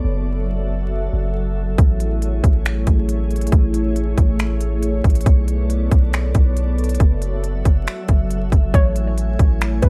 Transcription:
0.04 808-style bass F#1, ambient pad F#3 F#4 A4 E5
1.13 808-style bass F#1
1.78 808-style bass A1, ambient pad A3 E4 G#4 C#5, kick, closed hi-hat
2.00 closed hi-hat
2.22 closed hi-hat
2.44 808-style bass A1, kick, closed hi-hat
2.66 finger snap, closed hi-hat
2.87 808-style bass A1, kick, closed hi-hat
3.09 closed hi-hat
3.31 closed hi-hat
3.36 closed hi-hat
3.41 closed hi-hat
3.47 closed hi-hat
3.52 808-style bass A1, kick, closed hi-hat
3.74 closed hi-hat
3.96 closed hi-hat
4.18 808-style bass A1, kick, closed hi-hat
4.39 finger snap, closed hi-hat
4.61 closed hi-hat
4.83 closed hi-hat
5.04 808-style bass A1, kick, closed hi-hat
5.10 closed hi-hat
5.15 closed hi-hat
5.21 closed hi-hat
5.26 808-style bass B1, ambient pad B3 A4 D5, kick, closed hi-hat
5.48 closed hi-hat
5.70 closed hi-hat
5.91 808-style bass B1, kick, closed hi-hat
6.13 finger snap, closed hi-hat
6.35 808-style bass B1, kick, closed hi-hat
6.57 closed hi-hat
6.78 closed hi-hat
6.84 closed hi-hat
6.89 closed hi-hat
6.95 closed hi-hat
7.00 808-style bass F#1, ambient pad F#3 F#4 E5, kick, closed hi-hat
7.22 closed hi-hat
7.44 closed hi-hat
7.65 808-style bass F#1, kick, closed hi-hat
7.87 finger snap, closed hi-hat
8.08 808-style bass F#1, kick, closed hi-hat
8.30 closed hi-hat
8.52 808-style bass F#1, kick, closed hi-hat
8.74 808-style bass A1, ambient pad A3 E4 C#5 G#5, synth pluck C#5, kick, closed hi-hat
8.96 closed hi-hat
9.18 closed hi-hat
9.39 808-style bass A1, kick, closed hi-hat
9.61 finger snap, closed hi-hat
9.82 808-style bass A1, synth pluck B4, kick, closed hi-hat

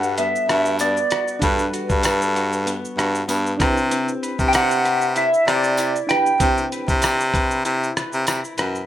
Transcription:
Already playing: baritone saxophone G2, clean electric guitar G3 F#4 A4 D5, reed electric piano D4 F#4 A4 B4, electric slide guitar F#5
0.03 shaker
0.18 clean electric guitar B3, electric slide guitar E5, closed hi-hat, shaker
0.36 shaker
0.48 baritone saxophone G2, clean electric guitar F#4, cross-stick, closed hi-hat, shaker
0.65 shaker
0.79 clean electric guitar B3, electric slide guitar D5, closed hi-hat, tambourine, shaker
0.97 shaker
1.11 clean electric guitar F#4, cross-stick, closed hi-hat, shaker
1.28 shaker
1.39 baritone saxophone G2, clean electric guitar G3, reed electric piano D4 F#4 A4, kick, closed hi-hat, shaker
1.43 electric slide guitar B4, reed electric piano B4
1.59 shaker
1.73 clean electric guitar F#4, closed hi-hat, shaker
1.90 baritone saxophone G2, kick, shaker
2.03 clean electric guitar A4, cross-stick, closed hi-hat, tambourine, shaker
2.22 shaker
2.36 clean electric guitar F#4, closed hi-hat, shaker
2.53 shaker
2.66 clean electric guitar B3, closed hi-hat, shaker
2.85 shaker
2.97 baritone saxophone G2, clean electric guitar F#4, cross-stick, closed hi-hat, shaker
3.15 shaker
3.28 baritone saxophone G2, clean electric guitar B3, closed hi-hat, tambourine, shaker
3.47 shaker
3.57 baritone saxophone C3, clean electric guitar C4, reed electric piano D4 E4 G4, kick, closed hi-hat, shaker
3.62 reed electric piano B4, cross-stick
3.77 shaker
3.91 clean electric guitar C4, closed hi-hat, shaker
4.08 shaker
4.23 clean electric guitar B4, closed hi-hat, shaker
4.39 baritone saxophone C3, kick, shaker
4.48 electric slide guitar G5
4.53 clean electric guitar D5, electric slide guitar F#5, cross-stick, closed hi-hat, tambourine, shaker
4.71 shaker
4.85 clean electric guitar B4, closed hi-hat, shaker
5.01 shaker
5.16 clean electric guitar E4, electric slide guitar E5, closed hi-hat, shaker
5.34 shaker
5.47 baritone saxophone C3, clean electric guitar B4, electric slide guitar D5, cross-stick, closed hi-hat, shaker
5.64 shaker
5.77 clean electric guitar E4, closed hi-hat, tambourine, shaker
5.96 shaker
6.07 reed electric piano D4 E4 G4, clean electric guitar B4, electric slide guitar G5, cross-stick, closed hi-hat, shaker
6.12 reed electric piano B4
6.26 shaker
6.40 baritone saxophone C3, clean electric guitar C4, kick, closed hi-hat, shaker
6.58 shaker
6.72 clean electric guitar B4, closed hi-hat, shaker
6.88 baritone saxophone C3, kick, shaker
7.02 clean electric guitar D5, cross-stick, closed hi-hat, tambourine, shaker
7.20 shaker
7.34 clean electric guitar B4, kick, closed hi-hat, shaker
7.51 shaker
7.65 baritone saxophone C3, clean electric guitar E4, closed hi-hat, shaker
7.83 shaker
7.96 baritone saxophone C3, clean electric guitar B4, cross-stick, closed hi-hat, shaker
8.13 baritone saxophone C3, shaker
8.27 baritone saxophone C3, clean electric guitar E4, cross-stick, closed hi-hat, tambourine, shaker
8.44 shaker
8.58 baritone saxophone F#2, clean electric guitar B4, cross-stick, closed hi-hat, shaker
8.75 shaker

